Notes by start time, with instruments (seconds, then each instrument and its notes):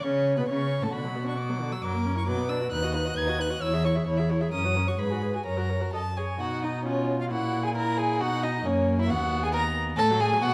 0.03 cello C#3, viola C#4, violin C#5 C#6
0.37 cello B2, viola B3, violin B4 B5
0.48 cello C#3, viola C#4, violin C#5 C#6
0.82 cello A2, viola A3, violin A4 A5
0.93 cello B2, viola D3, violin F#4 B5
1.04 viola F#3
1.16 viola B3
1.26 viola D4, violin C#6
1.37 viola B3, violin D6
1.49 viola F#3
1.61 viola D3
1.72 viola F#3, violin E6
1.82 cello F#2, viola F#3, violin A#4 D6
1.94 viola A#3
2.06 viola C#4
2.16 viola E4, violin C#6
2.27 cello B2, viola F#3, violin B4 D6
2.38 viola B3
2.49 viola D4, violin E6
2.61 viola F#4
2.71 cello D#2, viola D#4, violin B4 F#6
2.83 viola F#4, violin D#5
2.94 viola D#4, violin B4 F#6
3.05 viola F#4, violin D#5
3.17 cello D#2, viola D#4, violin B4 G#6
3.27 viola F#4, violin D#5
3.39 viola D#4, violin B4 F#6
3.50 viola F#4, violin D#5
3.62 cello E2, viola E4, violin C#5 E6
3.73 viola G#4, violin E5
3.85 viola E4, violin C#5 C#6
3.95 viola G#4, violin E5
4.07 cello E2, viola E4, violin C#5
4.17 viola G#4, violin E5
4.30 viola E4, violin C#5
4.41 viola G#4, violin E5
4.52 cello F#2, viola C#4, violin A#4 D#6
4.64 viola F#4, violin C#5
4.75 viola C#4, violin A#4
4.87 viola F#4, violin C#5 C#6
4.99 cello G#2, viola G#4, violin B4 B5
5.10 viola F#4, violin G#4
5.22 viola G#4, violin B4
5.34 viola F#4, violin G#4 G#5
5.45 cello F#2, viola A#4, violin C#5 A#5
5.57 viola F#4, violin A#4
5.69 viola A#4, violin C#5
5.81 viola F#4, violin A#4
5.93 cello F#2, violin A4 A5, viola D#5
6.17 violin G#4 G#5, viola C#5
6.40 cello B2, viola D#4, violin F#4 F#5
6.63 violin D#4 D#5
6.85 violin C#4 C#5, viola F4
7.21 violin F4 F5
7.31 cello A#2, viola E4, violin F#4 F#5
7.64 violin G#4 G#5
7.76 viola E4, violin A#4 A#5
7.98 violin G#4 G#5
8.21 cello B2, viola D#4, violin F#4 F#5
8.43 violin D#4 D#5
8.65 cello F#2, viola A#3, violin C#4 C#5
8.99 violin E4 E5
9.10 cello D#2, viola B3, violin F#4 F#5
9.44 violin G#4 G#5
9.53 violin A#4 A#5
9.97 cello A2, viola A3, violin A4 A5
10.11 viola F#3
10.20 viola A3, violin G#4 G#5
10.32 viola F#3
10.42 cello B2, viola B3, violin F#4 F#5